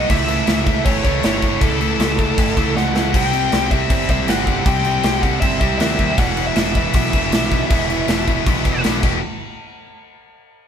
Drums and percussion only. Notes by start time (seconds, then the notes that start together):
0.10 kick, crash
0.28 crash
0.47 snare, crash
0.67 kick, crash
0.85 kick, crash
1.05 kick, crash
1.23 snare, crash
1.42 kick, crash
1.61 kick, crash
1.81 crash
2.00 snare, crash
2.19 kick, crash
2.38 kick, crash
2.57 kick, crash
2.77 snare
2.96 snare
3.14 kick, crash
3.33 crash
3.52 snare, crash
3.71 kick, crash
3.90 kick, crash
4.09 kick, crash
4.28 snare, crash
4.47 kick, crash
4.66 kick, crash
4.84 crash
5.03 snare, crash
5.23 kick, crash
5.42 kick, crash
5.61 kick, crash
5.80 snare, crash
5.99 kick, crash
6.18 kick, crash
6.37 crash
6.56 snare, crash
6.75 kick, crash
6.94 kick, crash
7.13 kick, crash
7.32 snare, crash
7.51 kick, crash
7.70 kick, crash
7.90 crash
8.08 snare, crash
8.28 kick, crash
8.46 kick, crash
8.65 kick, crash
8.84 snare, crash
9.03 kick, crash